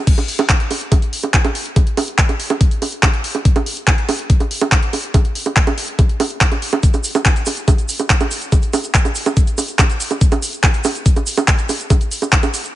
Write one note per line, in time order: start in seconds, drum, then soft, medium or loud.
0.07 kick loud
0.07 closed hi-hat loud
0.07 crash loud
0.18 closed hi-hat soft
0.18 high bongo soft
0.28 open hi-hat loud
0.39 closed hi-hat soft
0.39 high bongo medium
0.49 kick loud
0.49 clap loud
0.49 closed hi-hat loud
0.60 closed hi-hat soft
0.71 open hi-hat loud
0.71 high bongo soft
0.81 closed hi-hat soft
0.92 kick loud
0.92 closed hi-hat loud
0.92 high bongo medium
1.02 closed hi-hat soft
1.13 open hi-hat loud
1.23 closed hi-hat soft
1.23 high bongo soft
1.34 kick loud
1.34 clap loud
1.34 closed hi-hat loud
1.45 closed hi-hat soft
1.45 high bongo medium
1.55 open hi-hat loud
1.66 closed hi-hat soft
1.76 kick loud
1.76 closed hi-hat medium
1.76 high bongo soft
1.87 closed hi-hat soft
1.97 open hi-hat loud
1.97 high bongo medium
2.08 closed hi-hat soft
2.18 kick loud
2.18 clap loud
2.18 closed hi-hat medium
2.29 closed hi-hat soft
2.29 high bongo soft
2.40 open hi-hat loud
2.50 closed hi-hat soft
2.50 high bongo medium
2.61 kick loud
2.61 closed hi-hat loud
2.71 closed hi-hat soft
2.82 open hi-hat loud
2.82 high bongo soft
2.92 closed hi-hat soft
3.03 kick loud
3.03 clap loud
3.03 closed hi-hat medium
3.03 high bongo medium
3.14 closed hi-hat soft
3.24 open hi-hat loud
3.35 closed hi-hat soft
3.35 high bongo soft
3.45 kick loud
3.45 closed hi-hat medium
3.56 closed hi-hat soft
3.56 high bongo medium
3.66 open hi-hat loud
3.77 closed hi-hat soft
3.88 kick loud
3.88 clap loud
3.88 closed hi-hat medium
3.88 high bongo soft
3.98 closed hi-hat soft
4.09 open hi-hat loud
4.09 high bongo medium
4.19 closed hi-hat soft
4.30 kick loud
4.30 closed hi-hat medium
4.40 closed hi-hat soft
4.40 high bongo soft
4.51 open hi-hat loud
4.61 closed hi-hat soft
4.61 high bongo medium
4.72 kick loud
4.72 clap loud
4.72 closed hi-hat medium
4.83 closed hi-hat soft
4.93 open hi-hat loud
4.93 high bongo soft
5.04 closed hi-hat soft
5.14 kick loud
5.14 closed hi-hat medium
5.14 high bongo medium
5.25 closed hi-hat soft
5.35 open hi-hat loud
5.46 closed hi-hat soft
5.46 high bongo soft
5.57 kick loud
5.57 clap loud
5.57 closed hi-hat medium
5.67 closed hi-hat soft
5.67 high bongo medium
5.78 open hi-hat loud
5.88 closed hi-hat soft
5.99 kick loud
5.99 closed hi-hat medium
5.99 high bongo soft
6.09 closed hi-hat soft
6.20 open hi-hat loud
6.20 high bongo medium
6.30 closed hi-hat soft
6.41 kick loud
6.41 clap loud
6.41 closed hi-hat medium
6.52 closed hi-hat soft
6.52 high bongo soft
6.62 open hi-hat loud
6.73 closed hi-hat soft
6.73 high bongo medium
6.83 kick loud
6.83 closed hi-hat medium
6.83 shaker soft
6.94 closed hi-hat soft
6.94 high bongo soft
6.94 shaker soft
7.04 open hi-hat loud
7.04 shaker loud
7.15 closed hi-hat soft
7.15 high bongo medium
7.15 shaker soft
7.25 kick loud
7.25 clap loud
7.25 closed hi-hat medium
7.25 shaker medium
7.36 closed hi-hat soft
7.36 shaker soft
7.46 open hi-hat loud
7.46 high bongo soft
7.46 shaker medium
7.57 shaker soft
7.68 kick loud
7.68 closed hi-hat medium
7.68 high bongo medium
7.68 shaker soft
7.78 closed hi-hat soft
7.78 shaker soft
7.89 open hi-hat loud
7.89 shaker medium
7.99 closed hi-hat soft
7.99 high bongo soft
7.99 shaker soft
8.10 kick loud
8.10 clap loud
8.10 closed hi-hat medium
8.10 shaker medium
8.20 closed hi-hat soft
8.20 high bongo medium
8.20 shaker soft
8.31 open hi-hat loud
8.31 shaker medium
8.42 closed hi-hat soft
8.42 shaker soft
8.52 kick loud
8.52 closed hi-hat medium
8.52 high bongo soft
8.52 shaker medium
8.62 closed hi-hat soft
8.62 shaker soft
8.73 open hi-hat loud
8.73 high bongo medium
8.73 shaker medium
8.84 closed hi-hat soft
8.84 shaker soft
8.95 kick loud
8.95 clap loud
8.95 closed hi-hat medium
8.95 shaker medium
9.05 closed hi-hat soft
9.05 high bongo soft
9.05 shaker soft
9.15 open hi-hat loud
9.15 shaker medium
9.26 closed hi-hat soft
9.26 high bongo medium
9.26 shaker soft
9.37 kick loud
9.37 closed hi-hat medium
9.37 shaker medium
9.47 closed hi-hat soft
9.47 shaker soft
9.58 open hi-hat loud
9.58 high bongo soft
9.58 shaker loud
9.68 closed hi-hat soft
9.68 shaker soft
9.79 kick loud
9.79 clap loud
9.79 closed hi-hat medium
9.79 high bongo medium
9.79 shaker medium
9.90 closed hi-hat soft
9.90 shaker soft
10.00 open hi-hat loud
10.00 shaker medium
10.11 closed hi-hat soft
10.11 high bongo soft
10.11 shaker soft
10.21 kick loud
10.21 closed hi-hat loud
10.21 shaker soft
10.32 closed hi-hat soft
10.32 high bongo medium
10.32 shaker soft
10.42 open hi-hat loud
10.42 shaker medium
10.53 closed hi-hat soft
10.53 shaker soft
10.63 kick loud
10.63 clap loud
10.63 closed hi-hat loud
10.63 high bongo soft
10.63 shaker soft
10.74 closed hi-hat soft
10.74 shaker soft
10.84 open hi-hat loud
10.84 high bongo medium
10.84 shaker medium
10.95 closed hi-hat soft
10.95 shaker soft
11.06 kick loud
11.06 closed hi-hat loud
11.06 shaker medium
11.16 closed hi-hat soft
11.16 high bongo soft
11.16 shaker soft
11.27 open hi-hat loud
11.27 shaker loud
11.37 closed hi-hat soft
11.37 high bongo medium
11.37 shaker soft
11.48 kick loud
11.48 clap loud
11.48 closed hi-hat loud
11.48 shaker soft
11.58 closed hi-hat soft
11.58 shaker soft
11.69 open hi-hat loud
11.69 high bongo soft
11.69 shaker medium
11.80 closed hi-hat soft
11.80 shaker soft
11.90 kick loud
11.90 closed hi-hat loud
11.90 high bongo medium
11.90 shaker soft
12.01 closed hi-hat soft
12.01 shaker soft
12.11 open hi-hat loud
12.11 shaker medium
12.22 closed hi-hat soft
12.22 high bongo soft
12.22 shaker soft
12.32 kick loud
12.32 clap loud
12.32 closed hi-hat loud
12.32 shaker medium
12.43 closed hi-hat soft
12.43 high bongo medium
12.43 shaker soft
12.54 open hi-hat loud
12.54 shaker loud
12.64 closed hi-hat soft
12.64 shaker soft